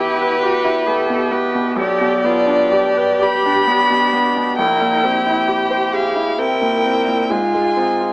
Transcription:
0.00 1.73 E2 soft
0.00 1.10 B2 soft
0.00 0.88 B3 soft
0.00 0.11 E4 soft
0.00 0.43 E4 soft
0.00 0.34 G4 soft
0.00 0.89 G4 medium
0.00 1.29 B4 medium
0.21 0.56 B4 soft
0.43 0.86 F#4 medium
0.43 0.78 G4 soft
0.65 1.00 E4 soft
0.88 1.23 B3 soft
0.88 1.76 G4 medium
0.88 1.34 A4 medium
1.10 1.46 B2 soft
1.31 1.68 B3 soft
1.31 1.78 B4 medium
1.55 1.77 B2 soft
1.76 4.54 B1 soft
1.76 2.27 G4 medium
1.76 2.23 G4 medium
1.76 3.24 D5 medium
2.01 2.38 B2 soft
2.23 2.62 B3 soft
2.23 2.75 F4 medium
2.23 4.54 G4 medium
2.46 2.86 D4 soft
2.72 3.11 G4 soft
2.72 3.21 G4 soft
2.97 3.35 B4 soft
3.21 3.71 G4 medium
3.21 3.59 G4 soft
3.21 4.58 B5 medium
3.46 3.82 D4 soft
3.67 4.04 B3 soft
3.67 4.58 D4 soft
3.90 4.27 B2 soft
4.13 4.49 B3 soft
4.36 4.58 B2 soft
4.59 7.28 A#1 soft
4.59 5.51 E4 soft
4.59 5.06 A#4 medium
4.59 5.96 G5 medium
4.81 5.17 A#2 soft
5.03 5.40 C4 soft
5.03 6.39 G4 medium
5.26 5.63 E4 soft
5.48 5.85 G4 soft
5.48 5.96 G4 soft
5.70 6.07 C5 soft
5.93 6.30 G4 soft
5.93 6.41 G#4 soft
5.93 6.40 F5 medium
6.16 6.53 E4 soft
6.39 6.76 C4 soft
6.39 7.33 E4 soft
6.39 7.31 A#4 soft
6.39 7.32 G5 medium
6.62 6.99 A#2 soft
6.85 7.22 C4 soft
7.07 7.31 A#2 soft
7.30 8.13 G#2 soft
7.30 8.13 F4 soft
7.30 7.80 F4 soft
7.30 8.13 G#5 medium
7.54 7.93 G#3 soft
7.77 8.13 C4 soft
7.77 8.13 D#4 soft
8.01 8.13 F4 soft

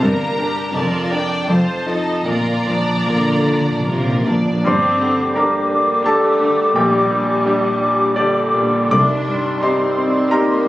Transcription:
0.02 0.63 G1 medium
0.02 0.72 G2 medium
0.02 0.63 G2 medium
0.02 0.36 A#3 soft
0.02 0.73 A#4 medium
0.02 0.36 A#4 soft
0.02 0.74 A#5 medium
0.38 0.71 D4 soft
0.38 0.74 D4 soft
0.38 0.75 G4 soft
0.38 0.71 A#4 soft
0.74 1.37 F1 medium
0.74 1.37 F2 medium
0.74 1.46 F2 soft
0.74 1.10 F4 soft
0.74 1.10 A#4 soft
0.74 1.48 D5 medium
0.74 1.11 A5 medium
1.10 1.45 D4 soft
1.10 1.49 D4 soft
1.10 1.45 A#4 soft
1.10 1.49 D5 soft
1.10 1.48 G5 medium
1.48 2.15 F1 soft
1.48 2.24 F2 soft
1.48 2.15 F2 medium
1.48 1.85 F4 soft
1.48 1.87 C5 medium
1.48 1.86 C5 soft
1.48 2.27 A5 medium
1.86 2.22 D#4 soft
1.86 2.28 D#4 soft
1.86 2.22 F4 soft
1.86 2.27 A4 soft
1.86 2.27 D#5 soft
2.25 2.94 A#1 soft
2.25 4.59 A#2 soft
2.25 2.94 A#2 medium
2.25 2.34 A#2 soft
2.25 2.64 F4 soft
2.25 2.64 A#4 soft
2.25 4.26 D5 soft
2.25 4.22 A#5 medium
2.35 2.41 A#2 soft
2.43 2.50 A#2 soft
2.52 2.59 A#2 soft
2.60 2.67 A#2 soft
2.66 2.74 A#2 soft
2.66 3.30 F3 soft
2.66 3.06 D4 soft
2.66 3.06 D5 soft
2.76 2.83 A#2 soft
2.84 2.90 A#2 soft
2.91 2.98 A#2 soft
2.99 3.07 A#2 soft
3.06 3.74 A#1 soft
3.06 3.14 A#2 soft
3.06 3.82 D3 soft
3.06 3.70 A#3 soft
3.06 3.46 F4 soft
3.06 3.45 A#4 soft
3.15 3.22 A#2 soft
3.23 3.30 A#2 soft
3.31 3.38 A#2 soft
3.46 3.54 A#2 soft
3.46 3.86 D4 soft
3.46 4.10 F4 soft
3.46 3.86 D5 soft
3.55 3.62 A#2 soft
3.63 3.71 A#2 soft
3.72 3.79 A#2 soft
3.80 3.87 A#2 soft
3.86 4.53 A#1 soft
3.86 3.95 A#2 medium
3.86 4.26 C3 soft
3.86 4.50 A#3 soft
3.86 4.23 F4 soft
3.86 4.23 A#4 soft
3.96 4.03 A#2 medium
4.04 4.11 A#2 medium
4.12 4.19 A#2 medium
4.20 4.27 A#2 medium
4.27 4.64 A#2 soft
4.27 4.35 A#2 medium
4.27 4.65 F3 soft
4.27 4.64 D4 soft
4.27 4.64 D5 soft
4.36 4.41 A#2 medium
4.42 4.49 A#2 medium
4.50 4.58 A#2 medium
4.64 5.21 G1 medium
4.64 6.71 G2 medium
4.64 5.20 G2 medium
4.64 8.89 G3 medium
4.64 8.89 G3 soft
4.64 5.31 C4 medium
4.64 8.88 D4 medium
4.64 5.32 C5 medium
4.64 5.32 C6 medium
4.64 8.89 D6 soft
5.01 5.57 D3 soft
5.35 6.05 A#3 medium
5.35 5.87 D4 medium
5.35 5.68 D4 soft
5.35 5.87 G4 medium
5.35 5.68 G4 soft
5.35 6.02 A#4 soft
5.35 5.87 D5 soft
5.35 6.01 A#5 medium
5.71 6.04 D4 soft
6.05 6.75 A3 medium
6.05 6.57 D4 medium
6.05 6.37 D4 soft
6.05 6.57 G4 medium
6.05 6.37 G4 soft
6.05 6.72 A4 medium
6.05 6.57 D5 soft
6.05 6.71 A5 medium
6.40 6.75 D3 soft
6.74 7.31 A#1 medium
6.74 8.89 A#1 medium
6.74 7.31 A#2 medium
6.74 8.14 G3 medium
6.74 7.45 G4 medium
6.74 8.13 G5 medium
7.10 7.67 A#2 soft
7.46 7.78 D4 soft
7.46 7.99 D4 medium
7.46 7.78 G4 soft
7.46 7.99 G4 medium
7.46 7.99 D5 soft
7.80 8.15 D4 soft
8.16 8.91 D3 medium
8.16 8.50 D4 soft
8.16 8.74 D4 medium
8.16 8.50 G4 soft
8.16 8.74 G4 medium
8.16 8.88 D5 medium
8.16 8.74 D5 soft
8.54 8.92 A#2 soft
8.91 9.48 C2 medium
8.91 10.68 C2 medium
8.91 9.48 C3 medium
8.91 10.68 G3 medium
8.91 10.68 G3 soft
8.91 9.63 D4 medium
8.91 10.68 D#4 soft
8.91 9.59 D5 medium
8.91 10.68 C6 soft
8.91 9.58 D6 medium
9.28 9.84 G2 soft
9.63 10.31 C4 medium
9.63 9.94 D#4 soft
9.63 10.14 D#4 medium
9.63 9.94 G4 soft
9.63 10.14 G4 medium
9.63 10.14 C5 soft
9.63 10.28 C5 soft
9.63 10.27 C6 medium
9.97 10.52 C4 soft
10.31 10.68 A#3 medium
10.31 10.68 D#4 medium
10.31 10.62 D#4 soft
10.31 10.62 G4 medium
10.31 10.68 G4 medium
10.31 10.68 A#4 medium
10.31 10.68 C5 soft
10.31 10.68 A#5 medium
10.64 10.68 G2 soft

